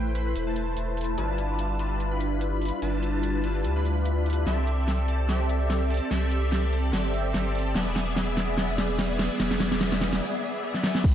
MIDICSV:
0, 0, Header, 1, 4, 480
1, 0, Start_track
1, 0, Tempo, 410959
1, 1376, Time_signature, 4, 2, 24, 8
1, 13019, End_track
2, 0, Start_track
2, 0, Title_t, "Analog polysynth"
2, 0, Program_c, 0, 90
2, 0, Note_on_c, 0, 57, 86
2, 0, Note_on_c, 0, 64, 80
2, 0, Note_on_c, 0, 71, 79
2, 0, Note_on_c, 0, 72, 81
2, 0, Note_on_c, 0, 79, 95
2, 150, Note_off_c, 0, 57, 0
2, 150, Note_off_c, 0, 64, 0
2, 150, Note_off_c, 0, 71, 0
2, 150, Note_off_c, 0, 72, 0
2, 150, Note_off_c, 0, 79, 0
2, 175, Note_on_c, 0, 57, 77
2, 175, Note_on_c, 0, 64, 72
2, 175, Note_on_c, 0, 71, 72
2, 175, Note_on_c, 0, 72, 73
2, 175, Note_on_c, 0, 83, 84
2, 516, Note_off_c, 0, 57, 0
2, 516, Note_off_c, 0, 64, 0
2, 516, Note_off_c, 0, 71, 0
2, 516, Note_off_c, 0, 72, 0
2, 516, Note_off_c, 0, 83, 0
2, 547, Note_on_c, 0, 57, 79
2, 547, Note_on_c, 0, 64, 71
2, 547, Note_on_c, 0, 71, 72
2, 547, Note_on_c, 0, 72, 72
2, 547, Note_on_c, 0, 81, 86
2, 1349, Note_off_c, 0, 57, 0
2, 1349, Note_off_c, 0, 71, 0
2, 1349, Note_off_c, 0, 72, 0
2, 1350, Note_off_c, 0, 64, 0
2, 1350, Note_off_c, 0, 81, 0
2, 1375, Note_on_c, 0, 55, 89
2, 1375, Note_on_c, 0, 62, 78
2, 1375, Note_on_c, 0, 64, 82
2, 1375, Note_on_c, 0, 65, 81
2, 1375, Note_on_c, 0, 71, 80
2, 1375, Note_on_c, 0, 81, 94
2, 2070, Note_off_c, 0, 55, 0
2, 2070, Note_off_c, 0, 62, 0
2, 2070, Note_off_c, 0, 64, 0
2, 2070, Note_off_c, 0, 65, 0
2, 2070, Note_off_c, 0, 71, 0
2, 2070, Note_off_c, 0, 81, 0
2, 2095, Note_on_c, 0, 55, 77
2, 2095, Note_on_c, 0, 62, 72
2, 2095, Note_on_c, 0, 64, 72
2, 2095, Note_on_c, 0, 65, 72
2, 2095, Note_on_c, 0, 71, 73
2, 2095, Note_on_c, 0, 81, 85
2, 2436, Note_off_c, 0, 55, 0
2, 2436, Note_off_c, 0, 62, 0
2, 2436, Note_off_c, 0, 64, 0
2, 2436, Note_off_c, 0, 65, 0
2, 2436, Note_off_c, 0, 71, 0
2, 2436, Note_off_c, 0, 81, 0
2, 2467, Note_on_c, 0, 55, 78
2, 2467, Note_on_c, 0, 62, 71
2, 2467, Note_on_c, 0, 64, 73
2, 2467, Note_on_c, 0, 65, 71
2, 2467, Note_on_c, 0, 71, 73
2, 2467, Note_on_c, 0, 83, 86
2, 3269, Note_off_c, 0, 62, 0
2, 3269, Note_off_c, 0, 64, 0
2, 3270, Note_off_c, 0, 55, 0
2, 3270, Note_off_c, 0, 65, 0
2, 3270, Note_off_c, 0, 71, 0
2, 3270, Note_off_c, 0, 83, 0
2, 3295, Note_on_c, 0, 55, 89
2, 3295, Note_on_c, 0, 62, 81
2, 3295, Note_on_c, 0, 64, 81
2, 3295, Note_on_c, 0, 65, 79
2, 3295, Note_on_c, 0, 71, 80
2, 3295, Note_on_c, 0, 81, 95
2, 3990, Note_off_c, 0, 55, 0
2, 3990, Note_off_c, 0, 62, 0
2, 3990, Note_off_c, 0, 64, 0
2, 3990, Note_off_c, 0, 65, 0
2, 3990, Note_off_c, 0, 71, 0
2, 3990, Note_off_c, 0, 81, 0
2, 4015, Note_on_c, 0, 55, 80
2, 4015, Note_on_c, 0, 64, 72
2, 4015, Note_on_c, 0, 65, 73
2, 4015, Note_on_c, 0, 71, 74
2, 4015, Note_on_c, 0, 81, 86
2, 4016, Note_on_c, 0, 62, 72
2, 4356, Note_off_c, 0, 55, 0
2, 4356, Note_off_c, 0, 64, 0
2, 4356, Note_off_c, 0, 65, 0
2, 4356, Note_off_c, 0, 71, 0
2, 4356, Note_off_c, 0, 81, 0
2, 4357, Note_off_c, 0, 62, 0
2, 4388, Note_on_c, 0, 55, 78
2, 4388, Note_on_c, 0, 62, 73
2, 4388, Note_on_c, 0, 64, 74
2, 4388, Note_on_c, 0, 65, 70
2, 4388, Note_on_c, 0, 71, 73
2, 4388, Note_on_c, 0, 83, 88
2, 5190, Note_off_c, 0, 55, 0
2, 5190, Note_off_c, 0, 62, 0
2, 5190, Note_off_c, 0, 64, 0
2, 5190, Note_off_c, 0, 65, 0
2, 5190, Note_off_c, 0, 71, 0
2, 5190, Note_off_c, 0, 83, 0
2, 5215, Note_on_c, 0, 60, 80
2, 5215, Note_on_c, 0, 67, 74
2, 5215, Note_on_c, 0, 69, 74
2, 5215, Note_on_c, 0, 74, 74
2, 5215, Note_on_c, 0, 76, 91
2, 5909, Note_off_c, 0, 60, 0
2, 5910, Note_off_c, 0, 67, 0
2, 5910, Note_off_c, 0, 69, 0
2, 5910, Note_off_c, 0, 74, 0
2, 5910, Note_off_c, 0, 76, 0
2, 5936, Note_on_c, 0, 60, 71
2, 5936, Note_on_c, 0, 67, 66
2, 5936, Note_on_c, 0, 69, 68
2, 5936, Note_on_c, 0, 74, 65
2, 5936, Note_on_c, 0, 81, 81
2, 6159, Note_off_c, 0, 60, 0
2, 6159, Note_off_c, 0, 67, 0
2, 6159, Note_off_c, 0, 69, 0
2, 6159, Note_off_c, 0, 74, 0
2, 6159, Note_off_c, 0, 81, 0
2, 6175, Note_on_c, 0, 60, 84
2, 6175, Note_on_c, 0, 67, 77
2, 6175, Note_on_c, 0, 69, 80
2, 6175, Note_on_c, 0, 74, 76
2, 6176, Note_on_c, 0, 76, 94
2, 6870, Note_off_c, 0, 60, 0
2, 6870, Note_off_c, 0, 67, 0
2, 6870, Note_off_c, 0, 69, 0
2, 6870, Note_off_c, 0, 74, 0
2, 6870, Note_off_c, 0, 76, 0
2, 6895, Note_on_c, 0, 67, 70
2, 6895, Note_on_c, 0, 69, 67
2, 6895, Note_on_c, 0, 74, 69
2, 6895, Note_on_c, 0, 81, 84
2, 6896, Note_on_c, 0, 60, 75
2, 7118, Note_off_c, 0, 60, 0
2, 7118, Note_off_c, 0, 67, 0
2, 7118, Note_off_c, 0, 69, 0
2, 7118, Note_off_c, 0, 74, 0
2, 7118, Note_off_c, 0, 81, 0
2, 7135, Note_on_c, 0, 60, 83
2, 7135, Note_on_c, 0, 67, 76
2, 7135, Note_on_c, 0, 69, 78
2, 7135, Note_on_c, 0, 74, 76
2, 7135, Note_on_c, 0, 76, 91
2, 7829, Note_off_c, 0, 60, 0
2, 7829, Note_off_c, 0, 67, 0
2, 7829, Note_off_c, 0, 74, 0
2, 7830, Note_off_c, 0, 69, 0
2, 7830, Note_off_c, 0, 76, 0
2, 7855, Note_on_c, 0, 67, 69
2, 7855, Note_on_c, 0, 69, 67
2, 7855, Note_on_c, 0, 74, 69
2, 7855, Note_on_c, 0, 81, 84
2, 7856, Note_on_c, 0, 60, 75
2, 8078, Note_off_c, 0, 67, 0
2, 8078, Note_off_c, 0, 69, 0
2, 8078, Note_off_c, 0, 74, 0
2, 8078, Note_off_c, 0, 81, 0
2, 8079, Note_off_c, 0, 60, 0
2, 8095, Note_on_c, 0, 60, 86
2, 8095, Note_on_c, 0, 67, 81
2, 8095, Note_on_c, 0, 69, 82
2, 8095, Note_on_c, 0, 74, 82
2, 8095, Note_on_c, 0, 76, 95
2, 8790, Note_off_c, 0, 60, 0
2, 8790, Note_off_c, 0, 67, 0
2, 8790, Note_off_c, 0, 69, 0
2, 8790, Note_off_c, 0, 74, 0
2, 8790, Note_off_c, 0, 76, 0
2, 8815, Note_on_c, 0, 60, 78
2, 8815, Note_on_c, 0, 67, 71
2, 8815, Note_on_c, 0, 69, 72
2, 8815, Note_on_c, 0, 74, 71
2, 8815, Note_on_c, 0, 81, 83
2, 9038, Note_off_c, 0, 60, 0
2, 9038, Note_off_c, 0, 67, 0
2, 9038, Note_off_c, 0, 69, 0
2, 9038, Note_off_c, 0, 74, 0
2, 9038, Note_off_c, 0, 81, 0
2, 9055, Note_on_c, 0, 59, 88
2, 9055, Note_on_c, 0, 68, 78
2, 9055, Note_on_c, 0, 74, 81
2, 9055, Note_on_c, 0, 76, 96
2, 9518, Note_off_c, 0, 59, 0
2, 9518, Note_off_c, 0, 68, 0
2, 9518, Note_off_c, 0, 74, 0
2, 9518, Note_off_c, 0, 76, 0
2, 9535, Note_on_c, 0, 68, 81
2, 9535, Note_on_c, 0, 74, 80
2, 9535, Note_on_c, 0, 76, 97
2, 9536, Note_on_c, 0, 59, 89
2, 9998, Note_off_c, 0, 68, 0
2, 9998, Note_off_c, 0, 74, 0
2, 9998, Note_off_c, 0, 76, 0
2, 9999, Note_off_c, 0, 59, 0
2, 10015, Note_on_c, 0, 59, 90
2, 10015, Note_on_c, 0, 68, 84
2, 10015, Note_on_c, 0, 74, 83
2, 10015, Note_on_c, 0, 76, 102
2, 10478, Note_off_c, 0, 59, 0
2, 10478, Note_off_c, 0, 68, 0
2, 10478, Note_off_c, 0, 74, 0
2, 10478, Note_off_c, 0, 76, 0
2, 10494, Note_on_c, 0, 74, 84
2, 10495, Note_on_c, 0, 59, 91
2, 10495, Note_on_c, 0, 68, 82
2, 10495, Note_on_c, 0, 76, 102
2, 10958, Note_off_c, 0, 59, 0
2, 10958, Note_off_c, 0, 68, 0
2, 10958, Note_off_c, 0, 74, 0
2, 10958, Note_off_c, 0, 76, 0
2, 10975, Note_on_c, 0, 74, 82
2, 10975, Note_on_c, 0, 76, 97
2, 10976, Note_on_c, 0, 59, 89
2, 10976, Note_on_c, 0, 68, 85
2, 11198, Note_off_c, 0, 74, 0
2, 11198, Note_off_c, 0, 76, 0
2, 11199, Note_off_c, 0, 59, 0
2, 11199, Note_off_c, 0, 68, 0
2, 11215, Note_on_c, 0, 74, 85
2, 11216, Note_on_c, 0, 59, 92
2, 11216, Note_on_c, 0, 68, 84
2, 11216, Note_on_c, 0, 76, 104
2, 11438, Note_off_c, 0, 74, 0
2, 11439, Note_off_c, 0, 59, 0
2, 11439, Note_off_c, 0, 68, 0
2, 11439, Note_off_c, 0, 76, 0
2, 11456, Note_on_c, 0, 59, 94
2, 11456, Note_on_c, 0, 68, 86
2, 11456, Note_on_c, 0, 74, 87
2, 11456, Note_on_c, 0, 76, 106
2, 11679, Note_off_c, 0, 59, 0
2, 11679, Note_off_c, 0, 68, 0
2, 11679, Note_off_c, 0, 74, 0
2, 11679, Note_off_c, 0, 76, 0
2, 11696, Note_on_c, 0, 59, 93
2, 11696, Note_on_c, 0, 68, 85
2, 11696, Note_on_c, 0, 74, 83
2, 11696, Note_on_c, 0, 76, 102
2, 11919, Note_off_c, 0, 59, 0
2, 11919, Note_off_c, 0, 68, 0
2, 11919, Note_off_c, 0, 74, 0
2, 11919, Note_off_c, 0, 76, 0
2, 11935, Note_on_c, 0, 59, 96
2, 11935, Note_on_c, 0, 68, 87
2, 11935, Note_on_c, 0, 74, 86
2, 11935, Note_on_c, 0, 76, 105
2, 12158, Note_off_c, 0, 59, 0
2, 12158, Note_off_c, 0, 68, 0
2, 12158, Note_off_c, 0, 74, 0
2, 12158, Note_off_c, 0, 76, 0
2, 12175, Note_on_c, 0, 68, 85
2, 12175, Note_on_c, 0, 74, 85
2, 12175, Note_on_c, 0, 76, 104
2, 12176, Note_on_c, 0, 59, 94
2, 12398, Note_off_c, 0, 68, 0
2, 12398, Note_off_c, 0, 74, 0
2, 12398, Note_off_c, 0, 76, 0
2, 12399, Note_off_c, 0, 59, 0
2, 12415, Note_on_c, 0, 59, 93
2, 12415, Note_on_c, 0, 68, 84
2, 12415, Note_on_c, 0, 74, 85
2, 12415, Note_on_c, 0, 76, 103
2, 12638, Note_off_c, 0, 59, 0
2, 12638, Note_off_c, 0, 68, 0
2, 12638, Note_off_c, 0, 74, 0
2, 12638, Note_off_c, 0, 76, 0
2, 12655, Note_on_c, 0, 59, 96
2, 12655, Note_on_c, 0, 68, 86
2, 12655, Note_on_c, 0, 74, 87
2, 12655, Note_on_c, 0, 76, 103
2, 12878, Note_off_c, 0, 59, 0
2, 12878, Note_off_c, 0, 68, 0
2, 12878, Note_off_c, 0, 74, 0
2, 12878, Note_off_c, 0, 76, 0
2, 12895, Note_on_c, 0, 57, 91
2, 12895, Note_on_c, 0, 64, 82
2, 12895, Note_on_c, 0, 71, 81
2, 12895, Note_on_c, 0, 72, 82
2, 12896, Note_on_c, 0, 79, 100
2, 13019, Note_off_c, 0, 57, 0
2, 13019, Note_off_c, 0, 64, 0
2, 13019, Note_off_c, 0, 71, 0
2, 13019, Note_off_c, 0, 72, 0
2, 13019, Note_off_c, 0, 79, 0
2, 13019, End_track
3, 0, Start_track
3, 0, Title_t, "Sub bass"
3, 0, Program_c, 1, 38
3, 0, Note_on_c, 1, 33, 99
3, 402, Note_off_c, 1, 33, 0
3, 416, Note_on_c, 1, 28, 90
3, 882, Note_off_c, 1, 28, 0
3, 895, Note_on_c, 1, 28, 100
3, 1362, Note_off_c, 1, 28, 0
3, 1376, Note_on_c, 1, 31, 97
3, 3171, Note_off_c, 1, 31, 0
3, 3295, Note_on_c, 1, 31, 102
3, 4255, Note_on_c, 1, 38, 94
3, 4273, Note_off_c, 1, 31, 0
3, 5202, Note_off_c, 1, 38, 0
3, 5216, Note_on_c, 1, 36, 100
3, 7011, Note_off_c, 1, 36, 0
3, 7137, Note_on_c, 1, 36, 102
3, 8082, Note_off_c, 1, 36, 0
3, 8096, Note_on_c, 1, 31, 93
3, 8562, Note_off_c, 1, 31, 0
3, 8576, Note_on_c, 1, 31, 102
3, 9042, Note_off_c, 1, 31, 0
3, 9056, Note_on_c, 1, 28, 103
3, 10851, Note_off_c, 1, 28, 0
3, 10977, Note_on_c, 1, 28, 102
3, 11922, Note_off_c, 1, 28, 0
3, 12896, Note_on_c, 1, 33, 100
3, 13019, Note_off_c, 1, 33, 0
3, 13019, End_track
4, 0, Start_track
4, 0, Title_t, "Drums"
4, 175, Note_on_c, 9, 42, 60
4, 292, Note_off_c, 9, 42, 0
4, 415, Note_on_c, 9, 42, 78
4, 532, Note_off_c, 9, 42, 0
4, 655, Note_on_c, 9, 42, 68
4, 772, Note_off_c, 9, 42, 0
4, 895, Note_on_c, 9, 42, 80
4, 1012, Note_off_c, 9, 42, 0
4, 1136, Note_on_c, 9, 42, 50
4, 1180, Note_off_c, 9, 42, 0
4, 1180, Note_on_c, 9, 42, 68
4, 1215, Note_off_c, 9, 42, 0
4, 1215, Note_on_c, 9, 42, 81
4, 1332, Note_off_c, 9, 42, 0
4, 1375, Note_on_c, 9, 42, 80
4, 1492, Note_off_c, 9, 42, 0
4, 1615, Note_on_c, 9, 42, 65
4, 1732, Note_off_c, 9, 42, 0
4, 1855, Note_on_c, 9, 42, 79
4, 1972, Note_off_c, 9, 42, 0
4, 2096, Note_on_c, 9, 42, 60
4, 2212, Note_off_c, 9, 42, 0
4, 2335, Note_on_c, 9, 42, 79
4, 2452, Note_off_c, 9, 42, 0
4, 2575, Note_on_c, 9, 42, 67
4, 2692, Note_off_c, 9, 42, 0
4, 2815, Note_on_c, 9, 42, 80
4, 2932, Note_off_c, 9, 42, 0
4, 3055, Note_on_c, 9, 42, 50
4, 3099, Note_off_c, 9, 42, 0
4, 3099, Note_on_c, 9, 42, 66
4, 3135, Note_off_c, 9, 42, 0
4, 3135, Note_on_c, 9, 42, 80
4, 3252, Note_off_c, 9, 42, 0
4, 3296, Note_on_c, 9, 42, 74
4, 3412, Note_off_c, 9, 42, 0
4, 3535, Note_on_c, 9, 42, 63
4, 3652, Note_off_c, 9, 42, 0
4, 3776, Note_on_c, 9, 42, 77
4, 3893, Note_off_c, 9, 42, 0
4, 4016, Note_on_c, 9, 42, 58
4, 4133, Note_off_c, 9, 42, 0
4, 4256, Note_on_c, 9, 42, 75
4, 4373, Note_off_c, 9, 42, 0
4, 4496, Note_on_c, 9, 42, 65
4, 4613, Note_off_c, 9, 42, 0
4, 4736, Note_on_c, 9, 42, 75
4, 4853, Note_off_c, 9, 42, 0
4, 4976, Note_on_c, 9, 42, 48
4, 5021, Note_off_c, 9, 42, 0
4, 5021, Note_on_c, 9, 42, 62
4, 5056, Note_off_c, 9, 42, 0
4, 5056, Note_on_c, 9, 42, 79
4, 5173, Note_off_c, 9, 42, 0
4, 5216, Note_on_c, 9, 38, 48
4, 5216, Note_on_c, 9, 42, 76
4, 5333, Note_off_c, 9, 38, 0
4, 5333, Note_off_c, 9, 42, 0
4, 5456, Note_on_c, 9, 42, 61
4, 5573, Note_off_c, 9, 42, 0
4, 5696, Note_on_c, 9, 38, 50
4, 5696, Note_on_c, 9, 42, 72
4, 5813, Note_off_c, 9, 38, 0
4, 5813, Note_off_c, 9, 42, 0
4, 5936, Note_on_c, 9, 42, 57
4, 6053, Note_off_c, 9, 42, 0
4, 6176, Note_on_c, 9, 38, 52
4, 6176, Note_on_c, 9, 42, 73
4, 6293, Note_off_c, 9, 38, 0
4, 6293, Note_off_c, 9, 42, 0
4, 6416, Note_on_c, 9, 42, 62
4, 6533, Note_off_c, 9, 42, 0
4, 6656, Note_on_c, 9, 38, 55
4, 6656, Note_on_c, 9, 42, 73
4, 6773, Note_off_c, 9, 38, 0
4, 6773, Note_off_c, 9, 42, 0
4, 6896, Note_on_c, 9, 42, 46
4, 6940, Note_off_c, 9, 42, 0
4, 6940, Note_on_c, 9, 42, 61
4, 6976, Note_off_c, 9, 42, 0
4, 6976, Note_on_c, 9, 42, 78
4, 7092, Note_off_c, 9, 42, 0
4, 7136, Note_on_c, 9, 38, 60
4, 7136, Note_on_c, 9, 42, 74
4, 7252, Note_off_c, 9, 38, 0
4, 7252, Note_off_c, 9, 42, 0
4, 7376, Note_on_c, 9, 42, 61
4, 7493, Note_off_c, 9, 42, 0
4, 7616, Note_on_c, 9, 38, 63
4, 7616, Note_on_c, 9, 42, 75
4, 7733, Note_off_c, 9, 38, 0
4, 7733, Note_off_c, 9, 42, 0
4, 7856, Note_on_c, 9, 42, 56
4, 7973, Note_off_c, 9, 42, 0
4, 8096, Note_on_c, 9, 38, 65
4, 8096, Note_on_c, 9, 42, 74
4, 8213, Note_off_c, 9, 38, 0
4, 8213, Note_off_c, 9, 42, 0
4, 8336, Note_on_c, 9, 42, 63
4, 8453, Note_off_c, 9, 42, 0
4, 8576, Note_on_c, 9, 38, 67
4, 8576, Note_on_c, 9, 42, 74
4, 8692, Note_off_c, 9, 38, 0
4, 8692, Note_off_c, 9, 42, 0
4, 8815, Note_on_c, 9, 42, 47
4, 8860, Note_off_c, 9, 42, 0
4, 8860, Note_on_c, 9, 42, 64
4, 8896, Note_off_c, 9, 42, 0
4, 8896, Note_on_c, 9, 42, 77
4, 9013, Note_off_c, 9, 42, 0
4, 9056, Note_on_c, 9, 38, 77
4, 9056, Note_on_c, 9, 42, 78
4, 9173, Note_off_c, 9, 38, 0
4, 9173, Note_off_c, 9, 42, 0
4, 9296, Note_on_c, 9, 38, 75
4, 9296, Note_on_c, 9, 42, 64
4, 9412, Note_off_c, 9, 38, 0
4, 9412, Note_off_c, 9, 42, 0
4, 9536, Note_on_c, 9, 38, 81
4, 9536, Note_on_c, 9, 42, 77
4, 9653, Note_off_c, 9, 38, 0
4, 9653, Note_off_c, 9, 42, 0
4, 9776, Note_on_c, 9, 38, 79
4, 9776, Note_on_c, 9, 42, 59
4, 9893, Note_off_c, 9, 38, 0
4, 9893, Note_off_c, 9, 42, 0
4, 10016, Note_on_c, 9, 38, 83
4, 10016, Note_on_c, 9, 42, 77
4, 10133, Note_off_c, 9, 38, 0
4, 10133, Note_off_c, 9, 42, 0
4, 10256, Note_on_c, 9, 38, 86
4, 10256, Note_on_c, 9, 42, 67
4, 10373, Note_off_c, 9, 38, 0
4, 10373, Note_off_c, 9, 42, 0
4, 10496, Note_on_c, 9, 38, 85
4, 10496, Note_on_c, 9, 42, 78
4, 10613, Note_off_c, 9, 38, 0
4, 10613, Note_off_c, 9, 42, 0
4, 10736, Note_on_c, 9, 38, 92
4, 10736, Note_on_c, 9, 42, 51
4, 10780, Note_off_c, 9, 42, 0
4, 10780, Note_on_c, 9, 42, 65
4, 10816, Note_off_c, 9, 42, 0
4, 10816, Note_on_c, 9, 42, 80
4, 10853, Note_off_c, 9, 38, 0
4, 10933, Note_off_c, 9, 42, 0
4, 10976, Note_on_c, 9, 38, 91
4, 10976, Note_on_c, 9, 42, 82
4, 11093, Note_off_c, 9, 38, 0
4, 11093, Note_off_c, 9, 42, 0
4, 11108, Note_on_c, 9, 38, 81
4, 11217, Note_off_c, 9, 38, 0
4, 11217, Note_on_c, 9, 38, 97
4, 11217, Note_on_c, 9, 42, 67
4, 11333, Note_off_c, 9, 38, 0
4, 11333, Note_off_c, 9, 42, 0
4, 11349, Note_on_c, 9, 38, 83
4, 11456, Note_off_c, 9, 38, 0
4, 11456, Note_on_c, 9, 38, 94
4, 11456, Note_on_c, 9, 42, 84
4, 11573, Note_off_c, 9, 38, 0
4, 11573, Note_off_c, 9, 42, 0
4, 11589, Note_on_c, 9, 38, 89
4, 11696, Note_off_c, 9, 38, 0
4, 11696, Note_on_c, 9, 38, 96
4, 11696, Note_on_c, 9, 42, 61
4, 11813, Note_off_c, 9, 38, 0
4, 11813, Note_off_c, 9, 42, 0
4, 11829, Note_on_c, 9, 38, 89
4, 11946, Note_off_c, 9, 38, 0
4, 12549, Note_on_c, 9, 38, 53
4, 12656, Note_off_c, 9, 38, 0
4, 12656, Note_on_c, 9, 38, 83
4, 12773, Note_off_c, 9, 38, 0
4, 12788, Note_on_c, 9, 38, 80
4, 12896, Note_on_c, 9, 36, 119
4, 12896, Note_on_c, 9, 42, 84
4, 12896, Note_on_c, 9, 49, 104
4, 12905, Note_off_c, 9, 38, 0
4, 13013, Note_off_c, 9, 36, 0
4, 13013, Note_off_c, 9, 42, 0
4, 13013, Note_off_c, 9, 49, 0
4, 13019, End_track
0, 0, End_of_file